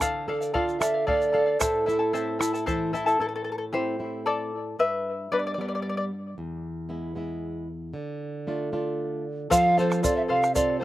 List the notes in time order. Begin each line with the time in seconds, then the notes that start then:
0.00 D3 A4 D5 F5, bombo rim, bombo low, shaker
0.15 bombo rim
0.28 A4 D5 F5
0.40 D5 F5, shaker
0.54 F4 A4 D5 F5, bombo low
0.69 shaker
0.79 A4 D5 E5 F5, bombo rim, shaker
0.94 D5 F5
1.07 A3 A4 D5 F5, bombo low
1.21 shaker
1.32 A4 D5 F5
1.46 D5 F5
1.59 A2 E4 A4 C5 E5 A5, bombo rim, bombo low, shaker
1.86 E4 A4 E5 A5, shaker
1.99 E4 A4 A5, bombo rim
2.13 C4 E4 A4 C5 E5 A5, shaker
2.28 bombo rim
2.39 E4 A4 E5 A5, bombo rim, shaker
2.54 E4 A4 A5, shaker
2.66 E3 E4 A4 C5 E5 A5, bombo low, shaker
2.93 E4 A4 E5 A5, shaker
3.06 E4 A4 A5, shaker
3.20 A2 E4 A4
3.29 A4
3.36 A4
3.44 A4
3.52 A4
3.58 A4
3.73 A3 C4 E4 G4 C5
3.99 A3 C4 E4
4.26 A4 D5
4.79 G2 B4 E5
5.32 G3 B3 D4 B4 D5
5.39 D5
5.47 D5
5.54 G3 D5
5.59 B3 D4 D5
5.68 D5
5.75 D5
5.82 D5
5.89 D5
5.97 D5
6.38 E2
6.89 G#3 B3 E4
7.15 G#3 B3 E4
7.94 D3
8.47 A3 D4 F4
8.72 A3 D4 F4
9.50 F3 A4 C5 F5, bombo low, shaker
9.77 C4 F4 A4 C5 F5, shaker
9.90 C5 F5, bombo rim, shaker
10.03 C4 F4 A4 C5 D5 F5, bombo low, shaker
10.16 E5, bombo rim
10.28 C3 A4 C5 F5, bombo rim
10.42 C5 F5, bombo rim, shaker
10.55 C4 F4 A4 C5 D5 F5, bombo rim, bombo low, shaker
10.70 bombo rim
10.79 A4 C5